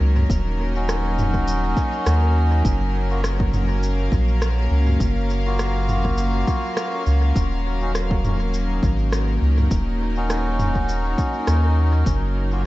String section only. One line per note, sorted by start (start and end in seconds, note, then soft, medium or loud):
0.00 12.05 F#3 medium
0.00 12.66 A#3 medium
0.00 12.66 C#4 medium
0.00 4.55 D#4 medium
0.00 12.66 A#4 medium
3.81 9.25 F5 medium
8.63 12.66 D#4 medium
12.06 12.66 F#3 medium